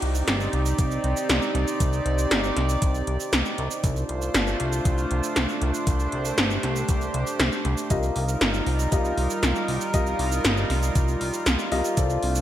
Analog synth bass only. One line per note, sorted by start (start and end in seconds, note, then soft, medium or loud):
0.02 0.23 C2 medium
0.28 0.48 G1 loud
0.53 0.74 C2 medium
0.79 0.99 C2 medium
1.04 1.14 C2 medium
1.29 1.40 C2 medium
1.55 1.65 C2 loud
1.80 2.01 C2 loud
2.06 2.26 C2 loud
2.31 2.52 G1 loud
2.57 2.77 C2 medium
2.82 3.03 C2 medium
3.07 3.18 C2 medium
3.33 3.43 C2 medium
3.58 3.69 C2 loud
3.84 4.04 C2 loud
4.09 4.30 C2 medium
4.35 4.55 G1 loud
4.60 4.81 C2 medium
4.85 5.06 C2 medium
5.11 5.21 C2 medium
5.36 5.47 C2 medium
5.62 5.72 C2 loud
5.87 6.08 C2 loud
6.13 6.33 C2 medium
6.38 6.58 G1 loud
6.63 6.84 C2 medium
6.89 7.09 C2 medium
7.14 7.24 C2 medium
7.40 7.50 C2 medium
7.65 7.75 C2 loud
7.91 8.11 C2 loud
8.16 8.36 C2 loud
8.41 8.62 G1 loud
8.67 8.87 C2 medium
8.92 9.13 C2 medium
9.18 9.28 C2 medium
9.43 9.53 C2 medium
9.68 9.79 C2 loud
9.94 10.14 C2 loud
10.19 10.40 C2 medium
10.45 10.65 G1 loud
10.70 10.91 C2 medium
10.96 11.16 C2 medium
11.21 11.31 C2 medium
11.46 11.57 C2 medium
11.72 11.82 C2 loud
11.97 12.18 C2 loud
12.23 12.41 C2 medium